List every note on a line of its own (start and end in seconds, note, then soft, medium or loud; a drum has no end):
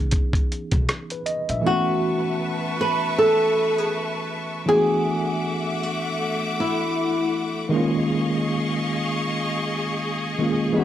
0.00 1.20 E3 medium
0.00 1.21 B3 medium
0.00 1.22 C#4 medium
0.00 1.23 D#4 medium
0.00 1.24 G#4 medium
0.11 kick loud
0.11 closed hi-hat medium
0.33 kick medium
0.33 closed hi-hat soft
0.52 closed hi-hat medium
0.71 0.86 B1 medium
0.71 kick medium
0.71 closed hi-hat medium
0.89 cross-stick loud
0.89 closed hi-hat medium
1.10 1.26 B4 medium
1.10 closed hi-hat soft
1.26 1.47 D#5 medium
1.26 closed hi-hat medium
1.49 1.62 A#1 medium
1.49 1.85 E5 medium
1.49 closed hi-hat soft
1.61 4.62 E3 medium
1.61 4.63 A3 medium
1.61 4.64 B3 medium
1.61 4.65 B4 medium
1.61 4.65 E5 medium
1.61 4.65 A5 medium
1.61 4.65 C#6 medium
1.66 4.65 C#4 medium
1.66 2.75 F#4 loud
1.66 4.66 F#4 medium
2.81 3.14 B4 medium
3.18 3.78 A4 medium
3.78 3.91 G#4 medium
4.66 7.67 E3 medium
4.66 7.67 A3 medium
4.66 7.69 A3 medium
4.66 7.68 B3 medium
4.66 5.83 G#4 loud
4.66 7.69 E5 medium
4.66 7.69 F#5 medium
4.66 7.69 D6 medium
4.71 7.69 D4 medium
4.71 7.70 F#4 medium
5.83 6.54 F#4 medium
6.60 7.15 E4 medium
7.69 10.32 D#3 medium
7.69 10.33 G#3 medium
7.69 10.34 A#3 medium
7.69 10.73 D#5 medium
7.69 10.73 F5 medium
7.69 10.73 C#6 medium
7.73 10.35 C#4 medium
7.73 10.36 F4 medium
7.73 10.84 G#4 medium
10.38 10.76 D#3 medium
10.38 10.73 G#3 medium
10.38 10.77 A#3 medium
10.38 10.76 C#4 medium
10.38 10.78 F4 medium
10.72 10.84 E3 medium
10.72 10.84 G#3 medium
10.72 10.84 B3 medium
10.72 10.84 E5 medium
10.72 10.84 F#5 medium
10.72 10.84 B5 medium
10.78 10.84 C#4 medium
10.78 10.84 F#4 medium